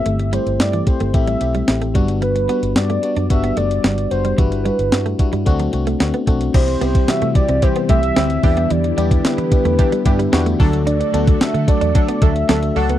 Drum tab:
CC |----------------|----------------|----------------|x---------------|
HH |xxxxxxxxxxxxxxxx|xxxxxxxxxxxxxxxx|xxxxxxxxxxxxxxxx|xxxxxxxxxxxxxxox|
SD |----o-------o---|----o-------o---|----o-------o---|----o-------o---|
BD |------o-o-----o-|--------o-------|o-----o-o-----o-|o--o--o-o-o---o-|

CC |----------------|----------------|
HH |xxxxxxxxxxxxxxox|xxxxxxxxxxxxxxox|
SD |----o-------o---|----o-------o---|
BD |---o--o-o-o---o-|---o--o-o-o-----|